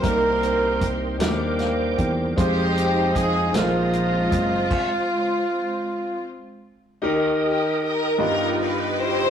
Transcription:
<<
  \new Staff \with { instrumentName = "Tonewheel organ" } { \time 6/8 \key ees \major \tempo 4. = 52 << { <bes' c'''>4. <bes' d'''>4. | <c'' ees'''>2. | r2. | <bes' ees'''>4. g'4. | } \\ { <c'' g''>2. | <ees'' f''>4. bes''4. | r2. | <ees'' g''>4. <dis'' g''>4. | } >> }
  \new Staff \with { instrumentName = "Trumpet" } { \time 6/8 \key ees \major bes'4 r2 | g'4 aes'8 f'4.~ | f'2 r4 | r2. | }
  \new Staff \with { instrumentName = "String section" } { \time 6/8 \key ees \major << { bes'4 r2 | g'4 aes'8 f'4.~ | f'2 r4 | r8 g'8 bes'8 ais'8 b'8 c''8 | } \\ { <ees' g'>4. r4. | <c' ees'>4. <aes c'>4.~ | <aes c'>2 r4 | r4. <dis' f'>4 <fes' g'>8 | } >> }
  \new Staff \with { instrumentName = "Grand piano" } { \time 6/8 \key ees \major << { r2 f''8 g''8 | r2. | r2. | r2. | } \\ { <c g bes c' ees' bes'>4. <ees ges g bes d' ees' bes'>4. | <aes c' ees' f' c''>4. <bes, aes c' ees' f' bes'>4. | r2. | <ees ees' g' bes'>4. <g, b f' g' dis'' ais''>4. | } >> }
  \new Staff \with { instrumentName = "Fingered electric bass" } { \clef bass \time 6/8 \key ees \major c,4. ees,4 fes,8 | f,4. bes,,4 ges,,8 | r2. | r2. | }
  \new DrumStaff \with { instrumentName = "Drums" } \drummode { \time 6/8 <hh bd>8 hh8 <hh bd>8 <hh sn>8 <hh sn>8 <hh bd>8 | <hh bd>8 hh8 <hh bd>8 <hh sn>8 hh8 <hh bd>8 | <cymc bd>4. r4. | r4. r4. | }
>>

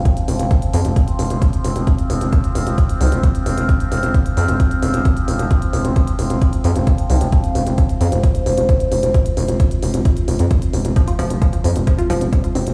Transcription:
<<
  \new Staff \with { instrumentName = "Synth drone" } { \clef bass \time 4/4 \key c \phrygian \tempo 4 = 132 <f c'>1~ | <f c'>1~ | <f c'>1~ | <f c'>1~ |
<f c'>1~ | <f c'>1 | <f c'>1 | }
  \new Staff \with { instrumentName = "Synth arpeggio sound" } { \clef bass \time 4/4 \key c \phrygian r1 | r1 | r1 | r1 |
r1 | r1 | f16 f'16 f16 r16 f16 f16 f16 r16 f16 f'16 f16 r16 g16 f16 c'16 r16 | }
  \new Staff \with { instrumentName = "Analog synth bass" } { \clef bass \time 4/4 \key c \phrygian r8 f,,16 f,,16 r8 f,16 f,,16 r8 f,,16 f,,16 r8 f,,16 f,,16 | r8 f,,16 f,,16 r8 f,,16 f,,16 r8 c,16 f,,16 r8 f,,16 f,,16 | r8 f,,16 f,,16 r8 f,16 f,,16 r8 f,,16 f,,16 r8 f,,16 f,,16 | r8 f,,16 f,,16 r8 f,,16 f,,16 r8 f,16 f,,16 r8 c,16 f,,16 |
r8 f,,16 f,,16 r8 f,16 f,,16 r8 f,,16 f,,16 r8 f,,16 f,,16 | r8 f,,16 f,,16 r8 f,,16 f,,16 r8 f,,16 f,16 r8 f,,16 f,,16 | r8 f,,16 f,,16 r8 f,16 f,,16 r8 f,,16 f,,16 r8 f,,16 f,,16 | }
  \new DrumStaff \with { instrumentName = "Drums" } \drummode { \time 4/4 <hh bd>16 hh16 hho16 hh16 <hh bd>16 hh16 hho16 hh16 <hh bd>16 hh16 hho16 hh16 <hh bd>16 hh16 hho16 hh16 | <hh bd>16 hh16 hho16 hh16 <hh bd>16 hh16 hho16 hh16 <hh bd>16 hh16 hho16 hh16 <hh bd>16 hh16 hho16 hh16 | <hh bd>16 hh16 hho16 hh16 <hh bd>16 hh16 hho16 hh16 <hh bd>16 hh16 hho16 hh16 <hh bd>16 hh16 hho16 hh16 | <hh bd>16 hh16 hho16 hh16 <hh bd>16 hh16 hho16 hh16 <hh bd>16 hh16 hho16 hh16 <hh bd>16 hh16 hho16 hh16 |
<hh bd>16 hh16 hho16 hh16 <hh bd>16 hh16 hho16 hh16 <hh bd>16 hh16 hho16 hh16 <hh bd>16 hh16 hho16 hh16 | <hh bd>16 hh16 hho16 hh16 <hh bd>16 hh16 hho16 hh16 <hh bd>16 hh16 hho16 hh16 <hh bd>16 hh16 hho16 hh16 | <hh bd>16 hh16 hho16 hh16 <hh bd>16 hh16 hho16 hh16 <hh bd>16 hh16 hho16 hh16 <hh bd>16 hh16 hho16 hh16 | }
>>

